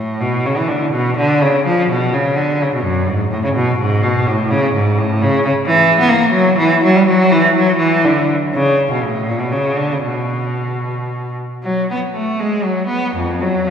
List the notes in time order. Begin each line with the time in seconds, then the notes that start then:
Already playing: A2
0.20 B2
0.46 C#3
0.58 E3
0.68 D3
0.92 B2
1.18 D3
1.41 C#3
1.66 F3
1.91 B2
2.13 C#3
2.36 D3
2.62 C#3
2.75 B2
2.84 F#2
3.09 G#2
3.30 A2
3.44 C#3
3.56 B2
3.79 G#2
4.03 B2
4.27 A2
4.51 C#3
4.75 G#2
4.98 A2
5.22 C#3
5.45 C#3
5.66 E3
5.99 B3
6.09 A#3
6.32 F#3
6.58 E3
6.83 F#3
6.96 G3
7.07 F#3
7.32 E3
7.55 F#3
7.78 E3
8.04 D3
8.54 C#3
8.91 B2
9.04 A2
9.28 A#2
9.39 B2
9.52 C#3
9.78 D3
9.92 C#3
10.03 B2
11.63 F#3
11.91 B3
12.14 A3
12.40 G#3
12.64 F#3
12.87 B3
13.16 F2
13.41 F#3
13.67 F3